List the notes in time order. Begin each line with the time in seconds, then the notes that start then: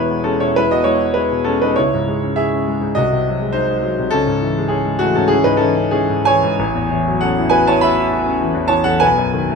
Already playing: E1 E2 B2 G#3 B3 E4 B4 C#5
0.10 B3
0.24 G#3 C#4 A4
0.40 B2 E4 C#5
0.56 G#3 E4 B4
0.71 B2 F#4 D#5
0.84 G#3 E4 C#5
0.99 E4
1.14 G#3 E4 B4
1.31 B2
1.44 G#3 C#4 A4
1.62 B2 D#4 B4
1.76 C#2 E4 C#5
1.94 G#2
2.08 G#3
2.23 C#4
2.36 E4 G#4 E5
2.53 C#4
2.68 G#3
2.81 G#2
2.95 C2 F#4 D#5
3.12 C3
3.28 F#3
3.42 G#3
3.52 D#4 C5
3.70 G#3
3.83 F#3
3.99 C3
4.11 C#2 C#4 A4
4.27 G#2
4.42 E3
4.58 G#3
4.68 C#4 G#4
4.86 G#3
4.99 E3 A3 F#4
5.15 G#2 C#4 A4
5.28 E3 C#4 G#4
5.44 G#2 D#4 B4
5.57 E3 C#4 A4
5.76 C#4
5.91 E3 C#4 G#4
6.10 G#2
6.25 E3 C#5 G#5
6.43 G#2
6.59 A1
6.75 E2
6.90 E3
7.08 F#3
7.21 C#4 A4 F#5
7.39 E4
7.50 F#4 B4 G#5
7.67 E4 C#5 A5
7.81 F#4 E5 B5
7.99 E4
8.13 F#4
8.26 C#4
8.41 E3
8.54 E2
8.68 E3 C#5 A5
8.84 E2 A4 F#5
9.00 B1 B4 G#5
9.18 F#2
9.33 D#3
9.50 A3